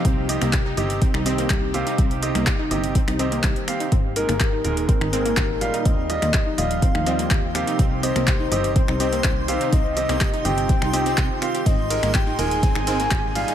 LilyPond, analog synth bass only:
\new Staff \with { instrumentName = "Analog synth bass" } { \clef bass \time 4/4 \key c \minor \tempo 4 = 124 c,8. c,8. g,,8. c,8. c,8. r16 | c,8. c,16 r8 g,,8. c,8. c,16 r8. | aes,,8. aes,,8. ees,,8. aes,,8. aes,,8. r16 | ees,8. ees,16 r8 ees,,8. ees,8. ees,8. r16 |
c,8. c,8. g,,8. c,8. c,8. r16 | c,8. c,16 r8 g,,8. c,8. c,16 r8. | aes,,8. aes,,8. ees,,8. aes,,8. aes,,8. r16 | }